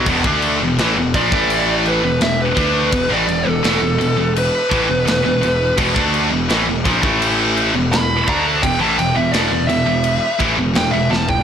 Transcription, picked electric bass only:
\new Staff \with { instrumentName = "Picked electric bass" } { \clef bass \time 4/4 \key a \minor \tempo 4 = 84 e,,16 d,8 e,,16 a,,16 e,,16 ais,,16 a,,4 e,,16 e,,8 d,8 | e,,16 a,,16 e,,16 e,,16 e,,16 e,,16 e,,16 e,,8 r16 a,,16 e,,16 e,,16 e,,16 e,,8 | e,,16 d,8 e,,16 a,,16 e,,16 ais,,16 a,,4 e,,16 e,,8 d,8 | e,,16 a,,16 e,,16 e,,16 e,,16 e,,16 e,,16 e,,8 r16 a,,16 e,,16 e,,16 e,,16 e,,8 | }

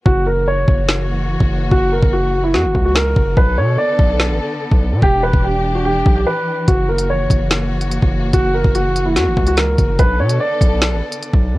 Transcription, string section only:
\new Staff \with { instrumentName = "String section" } { \time 4/4 \key fis \phrygian \tempo 4 = 145 << { <ais fis'>1~ | <ais fis'>1 | <b a'>1 | <d' g'>1 |
<ais fis'>1~ | <ais fis'>1 | <b a'>1 | } \\ { e1~ | e1 | d1 | e1~ |
e1~ | e1 | d1 | } >> }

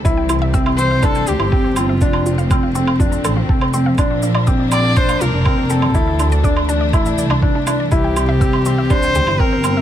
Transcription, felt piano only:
\new Staff \with { instrumentName = "Felt piano" } { \time 4/4 \key c \mixolydian \tempo 4 = 122 e'4 c'8 c'8 d'4 c'8 c'8 | d'4 c'8 c'8 d'4 c'8 c'8 | d'4 c'8 c'8 d'4 c'8 c'8 | e'4 d'8 d'8 e'4 d'8 d'8 |
e'4 c'8 c'8 d'4 c'8 c'8 | }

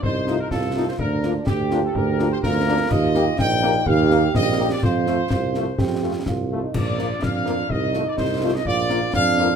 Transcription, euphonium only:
\new Staff \with { instrumentName = "Euphonium" } { \time 2/4 \key bes \major \tempo 4 = 125 ees'4 f'4 | d'4 g'4~ | g'4 f'4~ | f'4 ees'4 |
g'2 | f'4 f'4 | g'4 f'8. ees'16 | r4 d'4 |
ees'2 | f'4 d'4 | }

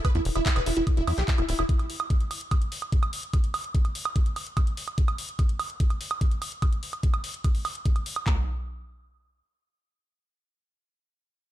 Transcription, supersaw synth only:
\new Staff \with { instrumentName = "Supersaw synth" } { \time 4/4 \key e \minor \tempo 4 = 146 b'16 e'16 r16 e'16 e'16 b'16 e'16 e'16 r16 e'16 e'16 g'16 e'16 e'16 e'16 e'16 | r1 | r1 | r1 |
r1 | r1 | r1 | }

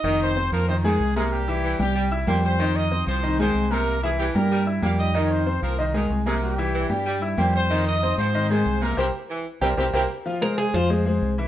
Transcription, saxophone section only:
\new Staff \with { instrumentName = "Saxophone section" } { \clef bass \time 4/4 \key f \minor \tempo 4 = 188 ees4. f4 ees4 c8~ | c4 e4 g4 bes4 | ees4. f4 ees4 c8~ | c4 e4 g4 bes4 |
ees4. f4 ees4 c8~ | c4 e4 g4 bes4 | ees4. f4 ees4 c8~ | c4 e4 g4 bes4 |
r1 | }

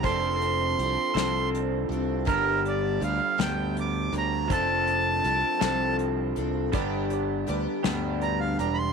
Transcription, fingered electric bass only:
\new Staff \with { instrumentName = "Fingered electric bass" } { \clef bass \time 6/8 \key g \mixolydian \tempo 4. = 54 f,,4 c,16 r16 c,4 c,8 | g,,4 d,16 r16 d,4 d,8 | f,,4 c,16 r16 c,4 c,8 | g,,4 d,16 r16 d,4 e,,8 | }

